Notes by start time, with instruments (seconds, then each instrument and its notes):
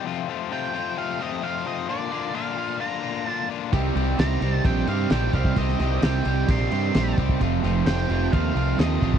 0.05 overdriven electric guitar F2 C3 F3 A3 C4 F4
0.27 overdriven electric guitar F2 C3 F3 A3 C4 F4
0.50 overdriven electric guitar F2 C3 F3 A3 C4 F4, lead electric guitar G5
0.73 overdriven electric guitar F2 C3 F3 A3 C4 F4
0.97 overdriven electric guitar F2 C3 F3 A3 C4 F4, lead electric guitar F5
1.19 overdriven electric guitar F2 C3 F3 A3 C4 F4, lead electric guitar D#5
1.42 overdriven electric guitar F2 C3 F3 A3 C4 F4, lead electric guitar F5
1.65 overdriven electric guitar F2 C3 F3 A3 C4 F4, lead electric guitar D#5
1.88 overdriven electric guitar A#2 D3 A#3 D4 F4, lead electric guitar D5
2.11 overdriven electric guitar A#2 D3 A#3 D4 F4
2.33 overdriven electric guitar A#2 D3 A#3 D4 F4, lead electric guitar F5
2.57 overdriven electric guitar A#2 D3 A#3 D4 F4
2.79 overdriven electric guitar A#2 D3 A#3 D4 F4, lead electric guitar A#5
3.02 overdriven electric guitar A#2 D3 A#3 D4 F4
3.26 overdriven electric guitar A#2 D3 A#3 D4 F4, lead electric guitar A5
3.49 overdriven electric guitar A#2 D3 A#3 D4 F4
3.72 picked electric bass C2, overdriven electric guitar C3 D#3 G3 C4 G4, kick, crash
3.95 picked electric bass C2, overdriven electric guitar C3 D#3 G3 C4 G4, crash
4.18 picked electric bass C2, overdriven electric guitar C3 D#3 G3 C4 G4, lead electric guitar A#5, snare, crash
4.41 picked electric bass C2, overdriven electric guitar C3 D#3 G3 C4 G4, crash
4.65 picked electric bass A#1, overdriven electric guitar C3 D#3 G3 C4 G4, lead electric guitar G5, kick, crash
4.88 picked electric bass G2, overdriven electric guitar C3 D#3 G3 C4 G4, lead electric guitar F5, crash
5.10 picked electric bass A#1, overdriven electric guitar C3 D#3 G3 C4 G4, lead electric guitar G5, snare, crash
5.33 picked electric bass C2, overdriven electric guitar C3 D#3 G3 C4 G4, lead electric guitar F5, kick, crash
5.45 kick
5.56 picked electric bass C2, overdriven electric guitar C3 D#3 G3 C4 G4, lead electric guitar D#5, kick, crash
5.69 snare
5.80 picked electric bass C2, overdriven electric guitar C3 D#3 G3 C4 G4, snare, crash
6.02 picked electric bass C2, overdriven electric guitar C3 D#3 G3 C4 G4, lead electric guitar G5, snare, crash
6.25 picked electric bass C2, overdriven electric guitar C3 D#3 G3 C4 G4, crash
6.48 picked electric bass A#1, overdriven electric guitar C3 D#3 G3 C4 G4, lead electric guitar C6, kick, crash
6.71 picked electric bass G2, overdriven electric guitar C3 D#3 G3 C4 G4, crash
6.94 picked electric bass A#1, overdriven electric guitar C3 D#3 G3 C4 G4, snare, crash
7.18 picked electric bass C2, overdriven electric guitar C3 D#3 G3 C4 G4, kick, crash
7.29 kick
7.40 picked electric bass F1, overdriven electric guitar F2 C3 F3 A3 C4 F4, kick, crash
7.63 picked electric bass F1, overdriven electric guitar F2 C3 F3 A3 C4 F4, snare, crash
7.86 picked electric bass F1, overdriven electric guitar F2 C3 F3 A3 C4 F4, lead electric guitar G5, snare, crash
8.09 picked electric bass F1, overdriven electric guitar F2 C3 F3 A3 C4 F4, crash
8.32 picked electric bass D#2, overdriven electric guitar F2 C3 F3 A3 C4 F4, lead electric guitar F5, kick, crash
8.55 picked electric bass C2, overdriven electric guitar F2 C3 F3 A3 C4 F4, crash
8.78 picked electric bass D#2, overdriven electric guitar F2 C3 F3 A3 C4 F4, lead electric guitar D#5, snare, crash
9.02 picked electric bass A1, overdriven electric guitar F2 C3 F3 A3 C4 F4, kick, crash
9.14 kick